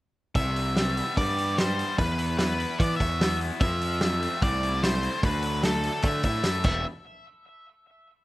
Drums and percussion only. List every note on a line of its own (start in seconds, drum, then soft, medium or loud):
0.35 kick loud
0.35 open hi-hat medium
0.56 open hi-hat medium
0.77 snare loud
0.77 open hi-hat medium
0.97 open hi-hat medium
1.17 kick loud
1.17 open hi-hat medium
1.38 open hi-hat medium
1.58 snare loud
1.58 open hi-hat medium
1.79 open hi-hat medium
1.98 kick loud
1.98 open hi-hat medium
2.19 open hi-hat medium
2.39 snare loud
2.39 open hi-hat medium
2.60 open hi-hat medium
2.80 kick loud
2.80 open hi-hat medium
3.00 kick medium
3.00 open hi-hat medium
3.21 snare loud
3.21 open hi-hat medium
3.41 open hi-hat medium
3.60 kick loud
3.60 open hi-hat medium
3.81 open hi-hat medium
4.01 snare loud
4.01 open hi-hat medium
4.23 open hi-hat medium
4.42 kick loud
4.42 open hi-hat medium
4.63 open hi-hat medium
4.83 snare loud
4.83 open hi-hat medium
5.03 open hi-hat medium
5.23 kick loud
5.23 open hi-hat medium
5.42 open hi-hat medium
5.63 snare loud
5.63 open hi-hat medium
5.83 open hi-hat medium
6.02 kick loud
6.02 open hi-hat medium
6.23 kick medium
6.23 open hi-hat medium
6.44 snare loud
6.44 open hi-hat medium
6.64 kick loud
6.64 crash medium